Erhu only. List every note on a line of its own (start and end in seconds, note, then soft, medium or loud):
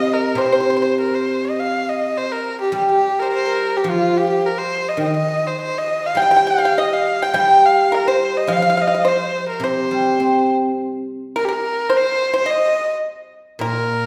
0.00 0.15 D#5 medium
0.13 0.43 A#4 medium
0.41 0.98 C5 medium
1.01 1.16 A#4 medium
1.15 1.46 C5 medium
1.45 1.61 D#5 medium
1.60 1.91 F5 medium
1.89 2.19 D#5 medium
2.18 2.34 C5 medium
2.32 2.60 A#4 medium
2.61 2.74 G4 medium
2.75 2.88 G4 medium
2.92 3.21 G4 medium
3.19 3.23 A#4 medium
3.19 3.26 C5 medium
3.25 3.35 A#4 medium
3.33 3.49 C5 medium
3.47 3.78 A#4 medium
3.77 3.91 G4 medium
3.90 4.19 F4 medium
4.18 4.48 G4 medium
4.46 4.60 A#4 medium
4.58 4.90 C5 medium
4.89 5.02 D#5 medium
5.04 5.16 D#5 medium
5.17 5.49 D#5 medium
5.47 5.60 C5 medium
5.62 5.80 C5 medium
5.78 6.08 D#5 medium
6.06 6.21 F5 medium
6.20 6.52 G5 medium
6.50 6.80 F5 medium
6.79 6.95 D#5 medium
6.94 7.25 F5 medium
7.24 7.36 G5 medium
7.37 7.67 G5 medium
7.65 7.96 F5 medium
7.95 8.09 A#4 medium
8.07 8.39 C5 medium
8.37 8.54 D#5 medium
8.53 8.83 F5 medium
8.81 9.09 D#5 medium
9.07 9.49 C5 medium
9.49 9.66 A#4 medium
9.64 10.50 C5 medium
11.39 11.46 A#4 medium
11.45 11.54 G4 medium
11.52 11.99 A#4 medium
11.97 12.38 C5 medium
12.38 12.52 C5 medium
12.50 12.92 D#5 medium
13.65 14.06 A#4 medium